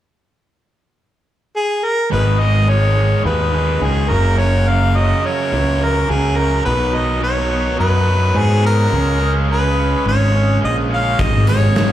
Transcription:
1.56 G#4
1.85 A#4
2.11 G#1 G#2 D#3 G#3 B3 D#4 G#4 B4
2.39 G#2 D#3 G#3 B3 D#4 G#4 D#5
2.67 G#2 D#3 G#3 B3 D#4 G#4 C#5
2.95 G#2 D#3 G#3 B3 D#4 G#4
3.25 D#2 G#2 D#3 G#3 B3 D#4 G#4 B4
3.52 G#2 D#3 G#3 B3 D#4 G#4
3.81 C#2 G#2 D#3 G#3 B3 D#4 G#4
4.08 F#1 F#2 C#3 F#3 C#4 F#4 A#4
4.37 F#2 C#3 F#3 C#4 F#4 A#4 C#5
4.67 F#2 C#3 F#3 C#4 F#4 A#4 F5
4.95 F#2 C#3 F#3 C#4 F#4 A#4 D#5
5.22 F#2 C#3 F#3 C#4 F#4 A#4 C#5
5.51 C#2 F#2 C#3 F#3 C#4 F#4 A#4
5.80 F#2 C#3 F#3 C#4 F#4 A#4
5.84 A#4
6.08 C#2 F#2 C#3 F#3 C#4 F#4 G#4 A#4
6.37 F#2 C#3 F#3 C#4 F#4 A#4
6.65 B1 B2 D#3 F#3 B3 D#4 B4
6.92 B2 D#3 F#3 B3 D#4 B4 D#5
7.21 B2 D#3 F#3 B3 D#4 B4 C#5
7.49 B2 D#3 F#3 B3 D#4 B4
7.79 F#2 B2 D#3 F#3 B3 D#4 B4
8.06 B2 D#3 F#3 B3 D#4 B4
8.34 G#2 B2 D#3 F#3 B3 D#4 B4
8.38 G#4
8.62 B2 D#3 F#3 B3 D#4 B4
8.66 A#4
8.91 C#2 C#3 G#3 C#4 F4 G#4
9.21 C#3 G#3 C#4 F4 G#4
9.49 C#3 G#3 C#4 F4 G#4 B4
9.77 C#3 G#3 C#4 F4 G#4
10.05 G#1 C#3 G#3 C#4 F4 G#4 C#5
10.33 C#3 G#3 C#4 F4 G#4
10.61 A#1 C#3 G#3 C#4 F4 G#4 D#5
10.89 C#3 G#3 C#4 F4 G#4
10.93 F5
11.18 G#1 G#2 D#3 G#3 B3 D#4 G#4 D#5, kick, closed hi-hat
11.46 G#2 D#3 G#3 B3 D#4 G#4 C#5, closed hi-hat
11.75 G#2 D#3 G#3 B3 D#4 G#4, snare, closed hi-hat

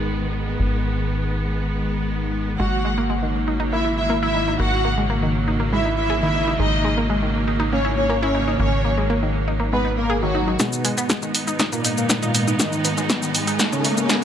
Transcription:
Already playing: G#1 G#2 D#3 G#3 B3
0.60 G#1
2.60 G#1 C#3 F#3 G#3 A#3 F#4 F#5
2.85 G#3
2.98 A#3
3.10 G#3
3.23 D#3
3.48 D#4
3.60 D#4
3.73 A#3 E4 E5
3.85 E4
3.98 E4 E5
4.10 A#3
4.23 E4 E5
4.35 D#4
4.48 D#4
4.60 G#1 A#3 F#4 F#5
4.85 A#3
4.98 G#3
5.10 A#3
5.23 D#3
5.48 D#4
5.60 A#3
5.72 G#3 E4 E5
5.85 D#4
5.97 E4 E5
6.10 G#4
6.22 D#3 E4 E5
6.35 D#4
6.48 D#4
6.60 G#1 G#3 D#4 D#5
6.85 G#3
6.98 A#3
7.10 G#3
7.23 D#3
7.48 D#4
7.60 D#4
7.72 A#3 C#4 C#5
7.85 E4
7.98 C#4 C#5
8.10 A#3
8.23 C#4 E4 C#5
8.35 D#4
8.48 D#4
8.60 G#1 A#3 C#4 C#5
8.85 A#3
8.98 G#3
9.10 A#3
9.23 D#3
9.48 D#4
9.60 A#3
9.73 G#3 B3 B4
9.85 D#4
9.98 A#3 A#4
10.10 G#4
10.22 D#3 F#3 F#4
10.35 D#4
10.48 D#4
10.60 G#2 B2 D#3 G#3 B3 D#4, kick, snare, riser, shaker
10.73 shaker
10.85 G#3, open hi-hat, shaker
10.98 B3, shaker
11.10 G#3, kick, snare, shaker
11.22 D#3, shaker
11.35 open hi-hat, shaker
11.47 D#4, shaker
11.60 D#4, kick, snare, shaker
11.72 A#2 A#3, shaker
11.85 D#4, open hi-hat, shaker
11.97 A#2 A#3, shaker
12.10 B3, kick, snare, shaker
12.22 A#2 A#3 D#4, shaker
12.35 D#4, open hi-hat, shaker
12.47 D#4, shaker
12.60 D#3 A#3 D#4, kick, snare, shaker
12.73 shaker
12.85 B3, open hi-hat, shaker
12.98 G#3, shaker
13.10 B3, kick, snare, shaker
13.22 D#3, shaker
13.35 open hi-hat, shaker
13.47 D#4, open hi-hat, shaker
13.59 A#3, kick, snare, shaker
13.72 C#3 G#3 C#4, shaker
13.85 D#4, open hi-hat, shaker
13.97 C#3 C#4, shaker
14.09 G#4, kick, snare, shaker

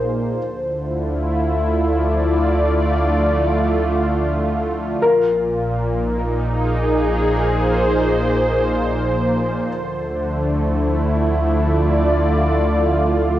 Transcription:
Already playing: A#1 A#2 F3 A#3 D#4 G#4 C5
0.35 D2 D3
0.58 E4 F4
0.64 A3
1.64 D5
5.02 A#1 A#2 A#4
5.27 A#3
5.88 D#4
6.42 G#4
7.12 C5
9.67 D2 D3
9.87 A3
10.39 E4
11.19 F4
11.29 D5

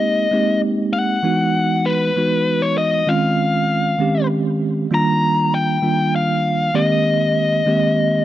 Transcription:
Already playing: G#3 A#3 C4 D#4 G4 D#5
0.31 G#3 A#3 C4 D#4 G4
0.93 F#5
1.23 E3 G#3 B3 D#4 F#4
1.86 B4
2.16 E3 G#3 B3 D#4 F#4
2.62 C#5
2.78 D#5
3.07 D#3 G#3 C4 C#4 F4 F5
3.99 D#3 G#3 C4 C#4 G4
4.91 D#3 G3 A#3 D4 F4 A#5
5.54 G5
5.82 D#3 G3 A#3 D4 F4
6.16 F5
6.74 D#3 G#3 A#3 C4 G4 D#5
7.66 D#3 G#3 A#3 C4 G4

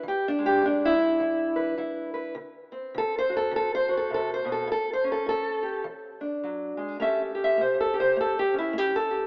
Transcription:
0.03 E3
0.08 G4
0.28 D4
0.39 G#3
0.46 G4
0.62 E3 D4
0.85 E4
0.98 D4
1.20 E3
1.56 B4
1.78 E3 E4
2.14 B4
2.35 D3
2.72 C4
2.94 D3 A4
3.18 C5
3.30 F#4
3.37 A4
3.51 D3
3.56 A4
3.75 C5
3.89 F#4
3.97 A4
4.10 C3
4.14 A4
4.34 C5
4.45 B2
4.52 A4
4.67 A2
4.72 A4
4.93 C5
5.04 C#4
5.12 A4
5.26 A2 A4
5.63 G4
5.84 E3
6.21 D4
6.44 F#3
6.77 G#3
7.00 A3 C#4 G4 A4 E5
7.35 G4
7.44 E5
7.58 A3 C5
7.80 A4
7.94 G4
8.00 C5
8.16 A3
8.21 A4
8.39 G4
8.53 C#4
8.58 E4
8.73 A3
8.78 G4
8.96 A4
9.11 G4

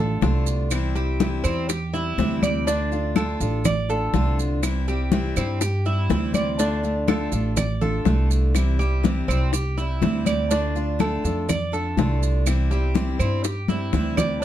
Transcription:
Already playing: A1 F4 A4
0.00 A3 D4
0.21 C2 D3 A3 D4 F4, high bongo, low bongo, high conga, maracas
0.47 high conga, maracas
0.71 C3 E3 G3 C4 E4, high bongo, high conga, claves, maracas
0.95 G3 C4 E4 G4, high conga, maracas
1.20 C3 E3 G3 C4 E4, high bongo, high conga, maracas
1.44 E2 G3 C4 E4, high bongo, high conga, claves, maracas
1.69 G4, muted steel-string acoustic guitar stroke, high bongo, high conga, maracas
1.93 G3 C4 E4, high bongo, high conga, maracas
2.18 D2 C3 E3 G3 C4 E4, high bongo, low bongo, high conga, maracas
2.43 D5, high bongo, high conga, claves, maracas
2.67 D3 A3 D4 F4, high bongo, high conga, maracas
2.91 A3 D4 F4, high conga, maracas
3.16 D3 A3 D4 F4 A4, high bongo, high conga, claves, maracas
3.40 A1 A3 D4 F4, high conga, maracas
3.65 D5, muted steel-string acoustic guitar stroke, high bongo, high conga, low conga, claves, maracas
3.89 A3 D4 F4 A4, high conga, maracas
4.13 C2 D3 A3 D4 F4, high bongo, low bongo, high conga, maracas
4.39 high conga, maracas
4.63 C3 E3 G3 C4 E4, high bongo, high conga, claves, maracas
4.88 G3 C4 E4 G4, high conga, maracas
5.12 C3 E3 G3 C4 E4, high bongo, high conga, maracas
5.36 G2 G3 C4 E4, high bongo, high conga, claves, maracas
5.61 G4, muted steel-string acoustic guitar stroke, high bongo, high conga, maracas
5.85 G3 C4 E4, high bongo, high conga, maracas
6.10 D2 C3 E3 G3 C4 E4, high bongo, low bongo, high conga, maracas
6.34 D5, high bongo, high conga, claves, maracas
6.59 D3 A3 D4 F4, high bongo, high conga, maracas
6.83 A3 D4 F4, high conga, maracas
7.08 D3 A3 D4 F4 A4, high bongo, high conga, claves, maracas
7.32 A1 A3 D4 F4, high conga, maracas
7.56 D5, muted steel-string acoustic guitar stroke, high bongo, high conga, low conga, claves, maracas
7.81 A3 D4 F4 A4, high conga, low conga, maracas
8.05 C2 D3 A3 D4 F4, high bongo, low bongo, high conga, maracas
8.31 high conga, maracas
8.55 C3 E3 G3 C4 E4, high bongo, high conga, claves, maracas
8.79 G3 C4 E4 G4, high conga, maracas
9.03 C3 E3 G3 C4 E4, high bongo, high conga, maracas
9.28 C2 G3 C4 E4, high bongo, high conga, claves, maracas
9.53 G4, muted steel-string acoustic guitar stroke, high bongo, high conga, maracas
9.77 G3 C4 E4, high bongo, high conga, maracas
10.02 D2 C3 E3 G3 C4 E4, high bongo, low bongo, high conga, maracas
10.26 D5, high bongo, high conga, claves, maracas
10.50 D3 A3 D4 F4, high bongo, high conga, maracas
10.75 A3 D4 F4, high conga, maracas
10.99 D3 A3 D4 F4 A4, high bongo, high conga, claves, maracas
11.24 F2 A3 D4 F4, high conga, maracas
11.49 D5, muted steel-string acoustic guitar stroke, high bongo, high conga, low conga, claves, maracas
11.72 A3 D4 F4 A4, high conga, maracas
11.97 C2 D3 A3 D4 F4, high bongo, low bongo, high conga, maracas
12.22 high conga, maracas
12.46 C3 E3 G3 C4 E4, high bongo, high conga, claves, maracas
12.70 G3 C4 E4 G4, high conga, maracas
12.94 C3 E3 G3 C4 E4, high bongo, high conga, maracas
13.19 G2 G3 C4 E4, high bongo, high conga, claves, maracas
13.44 G4, muted steel-string acoustic guitar stroke, high bongo, high conga, maracas
13.68 G3 C4 E4, high bongo, high conga, maracas
13.93 D2 C3 E3 G3 C4 E4, high bongo, low bongo, maracas
14.17 D5, high bongo, low conga, claves, maracas

